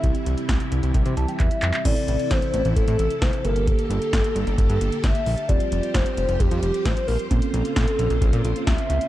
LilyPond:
<<
  \new Staff \with { instrumentName = "Soft synth lead" } { \time 4/4 \key a \phrygian \tempo 4 = 132 e''8 r2 r8 e''4 | d''4 c''4 a'4 c''8 bes'8 | a'2. e''4 | d''4 c''4 g'4 c''8 bes'8 |
a'2. e''4 | }
  \new Staff \with { instrumentName = "Tine electric piano" } { \time 4/4 \key a \phrygian << { r2 r8 a''16 g''16 e''4 | r1 | r1 | r1 |
r1 | } \\ { <c' e' g'>1 | <c' e' a'>2.~ <c' e' a'>8 <bes g' a'>8~ | <bes g' a'>2.~ <bes g' a'>8 r8 | <c' f' g'>1 |
<bes c' des'>1 | } >> }
  \new Staff \with { instrumentName = "String machine" } { \clef bass \time 4/4 \key a \phrygian << { <c e e'>1 | <c e e'>2.~ <c e e'>8 <d g'>8~ | <d g'>1 | <f g g'>1 |
<des bes f'>1 | } \\ { g1 | a'2.~ a'8 bes8~ | bes1 | c''1~ |
c''1 | } >> }
  \new Staff \with { instrumentName = "Analog synth bass" } { \clef bass \time 4/4 \key a \phrygian c,16 r16 c,16 r16 c,16 r16 c,16 c,16 c,16 c16 c,16 r16 e,16 r16 f,16 r16 | a,,16 r16 a,,16 r16 a,,16 r16 a,,16 a,,16 a,,16 a,16 a,,16 r16 c,16 r16 g,,8~ | g,,16 r16 g,,16 r16 g,,16 r16 g,,16 g,,16 g,,16 g,16 g,,16 r16 g,,16 r16 bes,,16 r16 | f,,16 r16 f,,16 r16 f,,16 r16 f,,16 f,,16 f,,16 f,16 f,,16 r16 a,,16 r16 bes,,16 r16 |
bes,,16 r16 bes,,16 r16 bes,,16 r16 bes,,16 bes,,16 bes,,16 bes,16 bes,,16 r16 c,16 r16 des,16 r16 | }
  \new DrumStaff \with { instrumentName = "Drums" } \drummode { \time 4/4 <hh bd>16 hh16 hh16 hh16 <hh bd sn>16 hh16 hh16 hh16 <hh bd>16 hh16 hh16 hh16 <hc hh bd>16 hh16 <hc hh>16 <hc hh>16 | <cymc hh bd>16 hh16 hh16 hh16 <hh bd sn>16 hh16 hh16 hh16 <hh bd>16 hh16 hh16 hh16 <hh bd sn>16 hh16 hh16 hh16 | <hh bd>16 hh16 hh16 hh16 <hh bd sn>16 hh16 hh16 hh16 <hh bd>16 hh16 hh16 hh16 <hh bd sn>16 hh16 hho16 hh16 | <hh bd>16 hh16 hh16 hh16 <hh bd sn>16 hh16 hh16 hh16 <hh bd>16 hh16 hh16 hh16 <hh bd sn>16 hh16 hho16 hh16 |
<hh bd>16 hh16 hh16 hh16 <hh bd sn>16 hh16 hh16 hh16 <hh bd>16 hh16 hh16 hh16 <hh bd sn>16 hh16 hh16 hh16 | }
>>